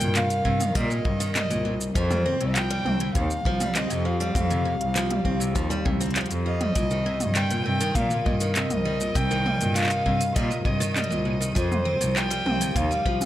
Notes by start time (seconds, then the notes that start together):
Already playing: C3 C4 A#4 D#5 G5
0.00 G2 A#2, closed hi-hat, shaker
0.15 A#2 F5, clap, closed hi-hat, shaker
0.30 closed hi-hat, shaker
0.45 G2 C3, kick
0.60 D#3, closed hi-hat, mid tom, shaker
0.75 A#2 G3 D#5, kick, closed hi-hat, shaker
0.90 A#2, shaker
1.05 G2 C3, kick
1.20 D#3, closed hi-hat, shaker
1.35 G3 D#5, clap, closed hi-hat, mid tom, shaker
1.50 C2 A#2, closed hi-hat, shaker
1.65 A#2
1.81 shaker
1.95 F2 F3 C5, kick, closed hi-hat, shaker
2.10 G3, mid tom, shaker
2.26 C4
2.40 C2 C3, closed hi-hat
2.55 F3 F5 G5, clap, closed hi-hat, shaker
2.65 G4
2.70 G3, closed hi-hat
2.85 C2 C4, mid tom
3.00 C3, closed hi-hat
3.15 D#2 C3 F5, kick, closed hi-hat, shaker
3.31 shaker
3.45 C2 F3, kick
3.60 G3, closed hi-hat, mid tom, shaker
3.75 C4 D#5, clap, closed hi-hat, shaker
3.90 F2 C3, closed hi-hat, shaker
4.05 F3 F5
4.20 G3, shaker
4.35 F2 C4, kick, closed hi-hat, mid tom, shaker
4.50 C3, closed hi-hat, shaker
4.65 C3
4.80 C2, closed hi-hat
4.95 F3, clap, closed hi-hat, shaker
5.10 G3, closed hi-hat, mid tom
5.25 C2 C4, kick
5.40 C3, shaker
5.55 D#2 F3, kick, closed hi-hat, shaker
5.70 G3, closed hi-hat, shaker
5.85 C2 C3, kick, mid tom
6.01 C4, closed hi-hat, shaker
6.06 closed hi-hat
6.11 closed hi-hat
6.16 F3, clap, closed hi-hat, shaker
6.21 closed hi-hat
6.26 closed hi-hat
6.30 F2, closed hi-hat, shaker
6.46 F4 D#5
6.61 G3, closed hi-hat, mid tom
6.75 C2 A#2 C3 D#7, kick, closed hi-hat, shaker
6.91 D#3, shaker
7.06 C3 A#4
7.20 G2, closed hi-hat, mid tom, shaker
7.35 G3 D#5 G5, clap, closed hi-hat, shaker
7.51 A#2, closed hi-hat, shaker
7.65 G2 C3 G5
7.80 D#3, closed hi-hat, shaker
7.94 A#2 G3 F5, kick, closed hi-hat, mid tom, shaker
8.11 A#2, shaker
8.25 G2 A#2 D#5, kick
8.40 D#3, closed hi-hat, shaker
8.55 C3 D#5, clap, closed hi-hat, shaker
8.70 C2, closed hi-hat, mid tom, shaker
8.85 G3
9.01 A#2, shaker
9.15 C2 C3 G5, kick, closed hi-hat, shaker
9.31 D#3, shaker
9.46 G3, mid tom
9.61 G2 A#2, closed hi-hat, shaker
9.75 A#2 F5, clap, closed hi-hat, shaker
9.79 clap
9.81 clap
9.83 clap
9.86 clap
9.88 D#3, clap, closed hi-hat, shaker
10.06 G2 C3, kick
10.21 closed hi-hat, shaker
10.35 A#2 G3 D#5, kick, closed hi-hat, shaker
10.51 A#2, shaker
10.65 G2 C3 D#5, kick
10.80 D#3, closed hi-hat, shaker
10.95 G3 D#5, clap, mid tom, shaker
11.04 closed hi-hat
11.10 C2 A#2, shaker
11.25 A#2
11.40 D#3, shaker
11.55 F2 F3 C5, kick, closed hi-hat, shaker
11.72 mid tom, shaker
11.85 C4
12.01 C2 C3 F5, closed hi-hat, shaker
12.06 G4
12.16 F3 G5, clap, shaker
12.30 G3, closed hi-hat, shaker
12.46 C2 C4, mid tom
12.61 C3, closed hi-hat, shaker
12.76 D#2 C3 F5, kick, closed hi-hat, shaker
12.91 G3, shaker
13.06 C2 F3, kick
13.21 closed hi-hat, mid tom, shaker